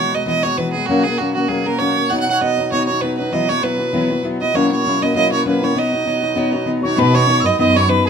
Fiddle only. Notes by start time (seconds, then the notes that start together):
Already playing: C#5
0.14 D#5
0.28 D#5
0.43 C#5
0.58 B4
0.73 G#4
0.86 F#4
1.04 G#4
1.18 F#4
1.34 F#4
1.48 G#4
1.66 A#4
1.79 C#5
2.09 F#5
2.20 F#5
2.30 C#5 F#5
2.41 D#5
2.72 C#5
2.87 C#5
3.01 B4
3.17 B4
3.33 D#5
3.49 C#5
3.63 B4
4.41 D#5
4.55 C#5
4.71 C#5
5.02 D#5
5.16 D#5
5.32 C#5
5.48 B4
5.64 C#5
5.78 D#5
6.86 C#5
6.99 B4
7.15 C#5
7.45 D#5
7.60 D#5
7.76 C#5
7.89 B4